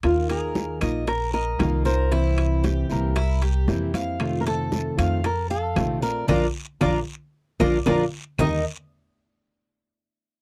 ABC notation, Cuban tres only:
X:1
M:4/4
L:1/8
Q:1/4=115
K:Eb
V:1 name="Cuban tres"
z B2 e B e2 B | =E2 G2 E G2 f- | f =A2 f A f2 d | [DFB] z [DFB] z2 [DFB] [DFB] z |
[EBe] z6 z |]